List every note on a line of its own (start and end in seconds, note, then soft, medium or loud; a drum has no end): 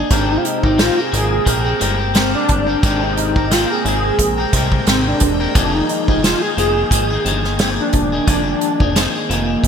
0.00 0.10 A#3 soft
0.00 0.12 D4 loud
0.00 0.11 D#4 soft
0.00 0.10 G#4 medium
0.10 0.38 G#1 loud
0.10 5.51 C3 medium
0.10 9.68 G#3 medium
0.10 0.63 G#3 medium
0.10 9.68 A#3 medium
0.10 0.64 C4 medium
0.10 0.33 D4 loud
0.10 0.64 G4 medium
0.10 0.62 A#4 medium
0.10 9.68 G5 medium
0.10 kick loud
0.10 closed hi-hat medium
0.31 0.38 D#4 medium
0.37 0.46 F4 medium
0.45 0.83 D#4 loud
0.45 closed hi-hat medium
0.63 0.91 G#1 loud
0.63 0.78 C4 soft
0.63 0.78 G4 medium
0.63 0.79 A#4 medium
0.63 kick loud
0.78 0.97 G#3 medium
0.78 0.98 C4 medium
0.78 1.02 F4 loud
0.78 0.96 G4 medium
0.78 0.95 A#4 medium
0.78 snare loud
0.78 closed hi-hat medium
0.96 1.11 C4 soft
0.96 1.13 G4 medium
0.96 1.14 G#4 loud
0.96 1.12 A#4 medium
1.12 1.40 G#1 loud
1.12 1.44 G#3 medium
1.12 1.45 C4 medium
1.12 1.78 G#4 loud
1.12 1.47 A#4 medium
1.12 closed hi-hat medium
1.45 1.74 A#1 loud
1.45 1.65 G#3 medium
1.45 1.65 C4 medium
1.45 1.64 G4 medium
1.45 1.63 A#4 medium
1.45 kick medium
1.45 closed hi-hat loud
1.64 1.79 C4 soft
1.64 1.80 G4 medium
1.64 1.80 A#4 medium
1.80 2.35 G1 medium
1.80 1.99 G#3 medium
1.80 1.99 C4 medium
1.80 1.98 G4 medium
1.80 1.97 A#4 medium
1.80 closed hi-hat medium
1.99 2.14 C4 soft
1.99 2.14 G4 soft
1.99 2.14 A#4 soft
2.14 2.67 G#3 medium
2.14 2.68 C4 medium
2.14 2.33 C4 medium
2.14 2.67 G4 medium
2.14 2.65 A#4 medium
2.14 snare loud
2.14 closed hi-hat medium
2.35 2.80 D4 loud
2.49 2.76 G1 medium
2.49 kick loud
2.49 closed hi-hat medium
2.67 2.83 C4 soft
2.67 2.83 G4 medium
2.67 2.82 A#4 medium
2.83 3.66 G#1 loud
2.83 3.36 G#3 medium
2.83 3.36 C4 medium
2.83 3.01 D4 medium
2.83 3.37 G4 loud
2.83 3.35 A#4 medium
2.83 kick loud
2.83 closed hi-hat medium
3.03 3.54 D#4 loud
3.17 closed hi-hat medium
3.36 3.51 C4 soft
3.36 3.51 G4 soft
3.36 3.51 A#4 medium
3.36 kick loud
3.51 3.70 G#3 medium
3.51 3.70 C4 medium
3.51 3.73 F4 loud
3.51 3.70 G4 medium
3.51 3.69 A#4 medium
3.51 snare loud
3.51 closed hi-hat medium
3.70 3.85 C4 soft
3.70 3.86 G4 medium
3.70 3.85 G#4 loud
3.70 3.85 A#4 medium
3.85 4.12 G#1 loud
3.85 4.38 G#3 medium
3.85 4.39 C4 medium
3.85 4.50 G#4 loud
3.85 4.37 A#4 medium
3.85 closed hi-hat medium
4.19 4.46 A#1 medium
4.19 kick medium
4.19 closed hi-hat loud
4.38 4.53 C4 soft
4.38 4.54 G4 medium
4.38 4.53 A#4 medium
4.53 4.80 C2 loud
4.53 4.86 G#3 medium
4.53 4.87 C4 medium
4.53 4.87 G4 medium
4.53 4.88 A#4 medium
4.53 kick loud
4.53 closed hi-hat medium
4.72 kick medium
4.87 5.14 G#1 loud
4.87 5.40 G#3 medium
4.87 5.05 C4 medium
4.87 5.40 C4 medium
4.87 5.40 G4 medium
4.87 5.39 A#4 medium
4.87 snare loud
4.87 closed hi-hat medium
5.07 5.53 D4 medium
5.20 5.48 E1 loud
5.20 kick loud
5.20 closed hi-hat medium
5.40 5.56 C4 soft
5.40 5.56 G4 medium
5.40 5.55 A#4 medium
5.55 5.83 F1 loud
5.55 9.68 D#3 medium
5.55 6.08 F3 medium
5.55 6.08 A#3 medium
5.55 5.76 D4 medium
5.55 6.08 D#4 medium
5.55 6.07 G#4 loud
5.55 kick loud
5.55 closed hi-hat medium
5.74 6.23 D#4 medium
5.89 closed hi-hat medium
6.08 6.35 F1 loud
6.08 6.23 A#3 soft
6.08 6.24 D#4 medium
6.08 6.23 G#4 medium
6.08 kick medium
6.24 6.42 F3 medium
6.24 6.43 A#3 medium
6.24 6.42 D#4 medium
6.24 6.41 F4 loud
6.24 6.41 G#4 medium
6.24 snare loud
6.24 closed hi-hat medium
6.42 6.57 A#3 soft
6.42 6.58 D#4 soft
6.42 6.49 G#4 loud
6.42 6.57 G#4 medium
6.57 6.85 F1 loud
6.57 6.91 F3 medium
6.57 6.92 A#3 medium
6.57 6.92 D#4 medium
6.57 7.22 G#4 loud
6.57 6.93 G#4 medium
6.57 closed hi-hat medium
6.91 7.18 G#1 loud
6.91 7.10 F3 medium
6.91 7.11 A#3 medium
6.91 7.11 D#4 medium
6.91 7.09 G#4 medium
6.91 kick medium
6.91 closed hi-hat loud
7.10 7.25 A#3 soft
7.10 7.26 D#4 medium
7.10 7.25 G#4 medium
7.25 7.80 G1 loud
7.25 7.44 F3 medium
7.25 7.45 A#3 medium
7.25 7.44 D#4 medium
7.25 7.43 G#4 medium
7.25 closed hi-hat medium
7.44 7.59 A#3 soft
7.44 7.60 D#4 soft
7.44 7.59 G#4 soft
7.44 snare soft
7.59 8.12 F3 medium
7.59 8.12 A#3 medium
7.59 7.69 C4 loud
7.59 8.11 G#4 medium
7.59 snare loud
7.59 closed hi-hat medium
7.80 8.25 D4 loud
7.93 8.21 E1 medium
7.93 kick loud
7.93 closed hi-hat medium
8.12 8.27 A#3 soft
8.12 8.28 D#4 medium
8.12 8.27 G#4 medium
8.27 8.55 F1 loud
8.27 8.80 F3 medium
8.27 8.81 A#3 medium
8.27 8.99 D4 loud
8.27 8.79 G#4 medium
8.27 kick loud
8.27 closed hi-hat medium
8.61 closed hi-hat medium
8.80 9.08 F1 medium
8.80 8.95 A#3 soft
8.80 8.96 D#4 medium
8.80 8.95 G#4 medium
8.80 kick loud
8.96 9.14 F3 medium
8.96 9.15 A#3 medium
8.96 9.31 C4 loud
8.96 9.15 D#4 medium
8.96 9.13 G#4 medium
8.96 snare loud
8.96 closed hi-hat medium
9.14 9.29 A#3 soft
9.14 9.30 D#4 medium
9.14 9.29 G#4 medium
9.29 9.57 F1 loud
9.29 9.68 F3 medium
9.29 9.68 A#3 loud
9.29 9.68 A#3 medium
9.29 9.68 D#4 medium
9.29 9.68 G#4 medium
9.29 closed hi-hat medium
9.64 9.68 G#1 medium
9.64 kick medium
9.64 closed hi-hat medium